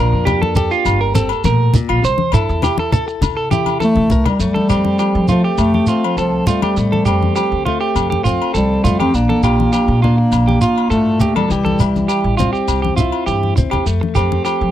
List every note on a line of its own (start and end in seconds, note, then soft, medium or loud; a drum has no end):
0.00 0.21 A#2 medium
0.00 0.25 F3 medium
0.00 2.01 A#3 medium
0.00 1.14 D4 medium
0.00 0.56 F4 medium
0.00 0.24 A#4 medium
0.13 0.68 F2 medium
0.25 0.80 F3 medium
0.25 0.40 G4 medium
0.25 low conga medium
0.25 low agogo medium
0.25 shekere medium
0.42 0.55 A4 medium
0.42 high conga medium
0.55 2.00 G4 medium
0.55 0.71 A4 medium
0.55 low conga medium
0.55 shekere medium
0.71 0.99 F4 medium
0.71 shekere soft
0.85 1.30 G1 medium
0.85 1.39 F2 medium
0.85 low agogo medium
0.85 shekere medium
1.01 1.14 A#4 medium
1.15 1.30 C4 medium
1.15 1.43 A4 medium
1.15 high conga medium
1.15 shekere loud
1.29 low agogo medium
1.29 shekere soft
1.44 1.74 A2 medium
1.44 1.67 A#2 loud
1.44 1.73 A#4 medium
1.44 high conga medium
1.44 shekere medium
1.74 2.02 A#2 medium
1.74 low conga medium
1.74 shekere loud
1.89 2.00 A#1 medium
1.89 2.03 F4 medium
1.89 low agogo medium
2.03 2.15 C2 medium
2.03 2.56 C3 medium
2.03 2.32 C5 medium
2.03 shekere medium
2.18 high conga medium
2.32 2.44 G2 loud
2.32 3.52 E4 medium
2.32 2.61 A4 medium
2.32 low agogo medium
2.32 shekere loud
2.49 2.71 E2 loud
2.49 shekere soft
2.62 3.16 E3 medium
2.62 2.78 G4 medium
2.62 low conga medium
2.62 low agogo medium
2.62 shekere medium
2.78 2.91 A4 medium
2.78 high conga medium
2.92 3.07 A4 medium
2.92 4.11 A4 medium
2.92 low conga medium
2.92 shekere loud
3.08 muted clean electric guitar stroke medium
3.08 shekere soft
3.21 3.75 G2 medium
3.21 3.78 C3 medium
3.21 low conga medium
3.21 low agogo medium
3.21 shekere medium
3.37 3.50 A4 medium
3.51 4.37 E4 medium
3.51 3.79 G4 medium
3.51 high conga medium
3.51 shekere medium
3.66 high conga medium
3.66 low agogo medium
3.66 shekere soft
3.80 4.35 E3 medium
3.80 4.08 A4 medium
3.80 high conga medium
3.80 shekere medium
3.84 4.24 A3 loud
3.95 4.07 C3 medium
3.95 high conga medium
4.10 4.22 C2 medium
4.10 4.37 A#4 medium
4.10 low conga medium
4.10 shekere medium
4.26 4.40 G3 medium
4.26 muted clean electric guitar stroke medium
4.26 low conga medium
4.26 low agogo medium
4.26 shekere soft
4.39 4.51 F2 medium
4.39 4.93 F2 medium
4.39 5.25 G3 medium
4.39 5.31 A3 medium
4.39 shekere medium
4.54 4.68 A4 medium
4.54 high conga medium
4.69 4.92 F2 medium
4.69 5.88 C4 soft
4.69 4.98 G4 medium
4.69 low agogo medium
4.69 shekere medium
4.85 high conga medium
4.99 5.53 F3 medium
4.99 5.27 G4 medium
4.99 low agogo medium
4.99 shekere medium
5.15 5.48 F3 loud
5.28 5.43 F3 medium
5.28 6.48 A3 medium
5.28 5.43 F4 medium
5.28 low conga medium
5.28 shekere medium
5.44 5.72 G4 medium
5.58 5.80 F2 medium
5.58 6.12 C3 medium
5.58 6.07 A3 medium
5.58 low agogo medium
5.58 shekere medium
5.74 5.87 G4 medium
5.74 high conga medium
5.87 7.07 C4 medium
5.87 6.16 F4 medium
5.87 shekere medium
6.04 6.18 F3 medium
6.04 low agogo medium
6.17 6.39 C2 medium
6.17 6.46 F3 medium
6.17 6.72 F3 medium
6.17 6.46 A4 medium
6.17 shekere medium
6.47 7.62 G3 medium
6.47 6.74 A3 medium
6.47 6.62 F4 medium
6.47 low conga medium
6.47 shekere loud
6.62 6.76 G4 medium
6.62 high conga medium
6.62 low agogo medium
6.62 shekere soft
6.77 7.30 F2 medium
6.77 6.99 A2 medium
6.77 7.66 A3 medium
6.77 shekere medium
6.92 7.05 A4 medium
6.92 high conga medium
7.05 7.29 F2 medium
7.05 8.25 C4 medium
7.05 7.34 G4 medium
7.05 low agogo medium
7.05 shekere medium
7.22 high conga medium
7.36 7.90 F3 medium
7.36 7.64 G4 medium
7.36 low agogo medium
7.36 shekere medium
7.52 7.74 D2 medium
7.65 8.84 A3 medium
7.65 7.80 F4 medium
7.65 low conga medium
7.81 8.09 G4 medium
7.95 8.17 F2 medium
7.95 8.49 C3 medium
7.95 low agogo medium
7.95 shekere medium
8.10 8.23 G4 medium
8.10 high conga medium
8.24 8.37 F2 medium
8.24 9.14 C4 medium
8.24 8.52 F4 medium
8.24 shekere medium
8.42 low agogo medium
8.54 8.77 C2 medium
8.54 9.08 F3 medium
8.54 9.03 G3 medium
8.54 8.82 A4 medium
8.54 shekere medium
8.84 9.06 F2 medium
8.84 9.11 A3 medium
8.84 8.98 F4 medium
8.84 low conga medium
8.84 shekere loud
9.00 9.16 C4 medium
9.00 9.13 G4 medium
9.00 high conga medium
9.00 low agogo medium
9.00 shekere soft
9.14 9.25 A#1 medium
9.14 10.02 A#3 medium
9.14 10.03 D4 medium
9.14 muted clean electric guitar stroke medium
9.14 shekere medium
9.29 9.42 A4 medium
9.29 high conga medium
9.43 9.65 A#1 medium
9.43 10.62 F4 medium
9.43 9.71 G4 medium
9.43 low agogo medium
9.43 shekere loud
9.60 high conga medium
9.73 10.26 F3 medium
9.73 10.00 G4 medium
9.73 low agogo medium
9.73 shekere medium
9.88 10.21 A#2 loud
10.02 10.87 A#3 loud
10.02 11.47 D4 medium
10.02 10.17 F4 medium
10.02 low conga medium
10.18 muted clean electric guitar stroke medium
10.31 10.54 A#1 medium
10.31 10.86 F2 medium
10.31 low agogo medium
10.31 shekere medium
10.48 10.61 G4 medium
10.48 high conga medium
10.61 10.89 F4 medium
10.61 11.51 F4 medium
10.61 shekere medium
10.78 low agogo medium
10.90 11.13 G2 medium
10.90 11.20 A2 medium
10.90 11.33 A3 medium
10.90 11.18 A4 medium
10.90 shekere medium
11.19 11.48 A#2 medium
11.19 11.35 G4 medium
11.19 low conga medium
11.19 shekere medium
11.36 13.10 G3 medium
11.36 11.49 A4 medium
11.36 high conga medium
11.36 low agogo medium
11.36 shekere soft
11.49 11.72 C2 loud
11.49 12.02 C3 medium
11.49 12.09 E3 medium
11.49 13.89 G4 medium
11.49 muted clean electric guitar stroke soft
11.49 shekere medium
11.65 11.78 A4 medium
11.65 high conga medium
11.79 12.02 C2 medium
11.79 12.98 E4 soft
11.79 low conga medium
11.79 low agogo medium
11.79 shekere loud
11.96 high conga medium
11.96 shekere soft
12.08 12.63 E3 medium
12.08 12.37 G4 medium
12.08 low agogo medium
12.08 shekere medium
12.24 12.47 A1 medium
12.37 13.57 C4 medium
12.37 12.52 F4 medium
12.37 high conga medium
12.37 low conga medium
12.37 shekere medium
12.53 12.81 G4 medium
12.53 shekere soft
12.68 12.90 C2 medium
12.68 13.22 G2 medium
12.68 low agogo medium
12.68 shekere medium
12.82 12.96 G4 medium
12.82 high conga medium
12.96 13.09 C2 medium
12.96 13.84 E4 medium
12.96 13.25 F4 medium
12.96 low conga medium
12.96 shekere medium
13.12 low agogo medium
13.26 13.49 G2 medium
13.26 13.81 E3 medium
13.26 13.55 G4 medium
13.26 shekere medium
13.43 high conga soft
13.56 13.71 D2 medium
13.56 13.86 C4 soft
13.56 muted clean electric guitar stroke medium
13.56 low conga medium
13.56 shekere loud
13.71 13.85 E2 medium
13.71 13.85 G4 medium
13.71 low conga medium
13.71 low agogo medium
13.71 shekere soft
13.86 14.39 F2 medium
13.86 13.98 F2 medium
13.86 14.71 A3 soft
13.86 shekere medium
14.01 muted clean electric guitar stroke medium
14.01 high conga medium
14.15 14.38 F2 medium
14.15 14.71 C4 medium
14.15 14.43 G4 medium
14.15 low agogo medium
14.15 shekere medium
14.32 high conga medium
14.45 14.71 F3 medium
14.45 14.71 G4 medium
14.45 low agogo medium
14.45 shekere medium
14.61 14.71 F3 medium